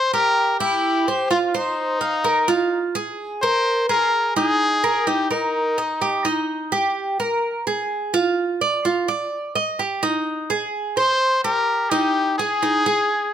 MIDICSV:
0, 0, Header, 1, 3, 480
1, 0, Start_track
1, 0, Key_signature, -4, "major"
1, 0, Tempo, 471328
1, 1331, Time_signature, 4, 2, 24, 8
1, 13580, End_track
2, 0, Start_track
2, 0, Title_t, "Cuban tres"
2, 0, Program_c, 0, 25
2, 0, Note_on_c, 0, 72, 72
2, 120, Note_off_c, 0, 72, 0
2, 137, Note_on_c, 0, 67, 70
2, 600, Note_off_c, 0, 67, 0
2, 615, Note_on_c, 0, 64, 87
2, 1078, Note_off_c, 0, 64, 0
2, 1100, Note_on_c, 0, 72, 74
2, 1328, Note_off_c, 0, 72, 0
2, 1330, Note_on_c, 0, 65, 78
2, 1562, Note_off_c, 0, 65, 0
2, 1573, Note_on_c, 0, 72, 74
2, 2036, Note_off_c, 0, 72, 0
2, 2046, Note_on_c, 0, 77, 67
2, 2279, Note_off_c, 0, 77, 0
2, 2285, Note_on_c, 0, 70, 70
2, 2519, Note_off_c, 0, 70, 0
2, 2526, Note_on_c, 0, 65, 89
2, 2991, Note_off_c, 0, 65, 0
2, 3006, Note_on_c, 0, 68, 75
2, 3471, Note_off_c, 0, 68, 0
2, 3491, Note_on_c, 0, 70, 71
2, 3954, Note_off_c, 0, 70, 0
2, 3965, Note_on_c, 0, 68, 72
2, 4430, Note_off_c, 0, 68, 0
2, 4444, Note_on_c, 0, 63, 84
2, 4910, Note_off_c, 0, 63, 0
2, 4926, Note_on_c, 0, 70, 73
2, 5158, Note_off_c, 0, 70, 0
2, 5163, Note_on_c, 0, 63, 75
2, 5396, Note_off_c, 0, 63, 0
2, 5404, Note_on_c, 0, 70, 71
2, 5869, Note_off_c, 0, 70, 0
2, 5886, Note_on_c, 0, 75, 69
2, 6118, Note_off_c, 0, 75, 0
2, 6125, Note_on_c, 0, 67, 68
2, 6358, Note_off_c, 0, 67, 0
2, 6364, Note_on_c, 0, 63, 82
2, 6830, Note_off_c, 0, 63, 0
2, 6844, Note_on_c, 0, 67, 77
2, 7310, Note_off_c, 0, 67, 0
2, 7329, Note_on_c, 0, 70, 72
2, 7793, Note_off_c, 0, 70, 0
2, 7810, Note_on_c, 0, 68, 68
2, 8274, Note_off_c, 0, 68, 0
2, 8287, Note_on_c, 0, 65, 89
2, 8753, Note_off_c, 0, 65, 0
2, 8772, Note_on_c, 0, 74, 73
2, 9003, Note_off_c, 0, 74, 0
2, 9013, Note_on_c, 0, 65, 74
2, 9244, Note_off_c, 0, 65, 0
2, 9251, Note_on_c, 0, 74, 73
2, 9715, Note_off_c, 0, 74, 0
2, 9731, Note_on_c, 0, 75, 70
2, 9963, Note_off_c, 0, 75, 0
2, 9973, Note_on_c, 0, 67, 68
2, 10204, Note_off_c, 0, 67, 0
2, 10213, Note_on_c, 0, 63, 92
2, 10677, Note_off_c, 0, 63, 0
2, 10693, Note_on_c, 0, 68, 80
2, 11158, Note_off_c, 0, 68, 0
2, 11171, Note_on_c, 0, 72, 74
2, 11637, Note_off_c, 0, 72, 0
2, 11654, Note_on_c, 0, 67, 71
2, 12119, Note_off_c, 0, 67, 0
2, 12135, Note_on_c, 0, 63, 83
2, 12600, Note_off_c, 0, 63, 0
2, 12621, Note_on_c, 0, 68, 78
2, 12850, Note_off_c, 0, 68, 0
2, 12858, Note_on_c, 0, 63, 73
2, 13089, Note_off_c, 0, 63, 0
2, 13098, Note_on_c, 0, 68, 72
2, 13562, Note_off_c, 0, 68, 0
2, 13580, End_track
3, 0, Start_track
3, 0, Title_t, "Muted trumpet"
3, 0, Program_c, 1, 59
3, 0, Note_on_c, 1, 72, 106
3, 104, Note_off_c, 1, 72, 0
3, 136, Note_on_c, 1, 70, 104
3, 580, Note_off_c, 1, 70, 0
3, 613, Note_on_c, 1, 67, 92
3, 1290, Note_off_c, 1, 67, 0
3, 1330, Note_on_c, 1, 65, 83
3, 1405, Note_off_c, 1, 65, 0
3, 1500, Note_on_c, 1, 65, 52
3, 1581, Note_on_c, 1, 63, 86
3, 1596, Note_off_c, 1, 65, 0
3, 3012, Note_off_c, 1, 63, 0
3, 3484, Note_on_c, 1, 72, 103
3, 3930, Note_off_c, 1, 72, 0
3, 3965, Note_on_c, 1, 70, 101
3, 4411, Note_off_c, 1, 70, 0
3, 4447, Note_on_c, 1, 68, 104
3, 5162, Note_on_c, 1, 67, 93
3, 5177, Note_off_c, 1, 68, 0
3, 5403, Note_off_c, 1, 67, 0
3, 5410, Note_on_c, 1, 63, 84
3, 6807, Note_off_c, 1, 63, 0
3, 11176, Note_on_c, 1, 72, 108
3, 11620, Note_off_c, 1, 72, 0
3, 11651, Note_on_c, 1, 70, 100
3, 12121, Note_on_c, 1, 67, 93
3, 12136, Note_off_c, 1, 70, 0
3, 12599, Note_off_c, 1, 67, 0
3, 12605, Note_on_c, 1, 68, 100
3, 13580, Note_off_c, 1, 68, 0
3, 13580, End_track
0, 0, End_of_file